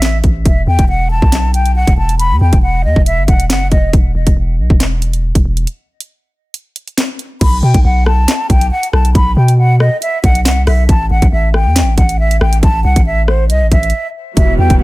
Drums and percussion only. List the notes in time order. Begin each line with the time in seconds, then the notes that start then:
0.02 snare, clap, closed hi-hat
0.24 kick, closed hi-hat
0.45 kick, closed hi-hat
0.79 kick, closed hi-hat
1.22 kick
1.32 snare, clap, closed hi-hat
1.54 closed hi-hat
1.66 closed hi-hat
1.87 kick, closed hi-hat
2.09 closed hi-hat
2.19 closed hi-hat
2.53 kick, closed hi-hat
2.96 kick
3.06 closed hi-hat
3.28 kick, closed hi-hat
3.40 closed hi-hat
3.50 snare, clap
3.72 kick, closed hi-hat
3.93 kick, closed hi-hat
4.27 kick, closed hi-hat
4.70 kick
4.80 snare, clap, closed hi-hat
5.02 closed hi-hat
5.13 closed hi-hat
5.35 kick, closed hi-hat
5.57 closed hi-hat
5.67 closed hi-hat
6.00 closed hi-hat
6.54 closed hi-hat
6.76 closed hi-hat
6.88 closed hi-hat
6.98 snare, clap, closed hi-hat
7.19 closed hi-hat
7.41 kick, closed hi-hat, crash
7.74 kick, closed hi-hat
8.06 cross-stick
8.28 snare, clap, closed hi-hat
8.50 kick, closed hi-hat
8.61 closed hi-hat
8.83 closed hi-hat
8.93 cross-stick
9.05 closed hi-hat
9.15 kick, closed hi-hat
9.48 closed hi-hat
9.80 cross-stick
10.02 closed hi-hat
10.24 kick, closed hi-hat
10.35 closed hi-hat
10.45 snare, clap
10.67 cross-stick, open hi-hat
10.89 kick, closed hi-hat
11.22 kick, closed hi-hat
11.54 cross-stick
11.76 snare, clap, closed hi-hat
11.98 kick, closed hi-hat
12.09 closed hi-hat
12.31 closed hi-hat
12.41 cross-stick
12.53 closed hi-hat
12.63 kick, closed hi-hat
12.96 kick, closed hi-hat
13.28 cross-stick
13.50 closed hi-hat
13.72 kick, closed hi-hat
13.83 closed hi-hat
13.90 closed hi-hat
14.37 kick, closed hi-hat
14.70 kick, closed hi-hat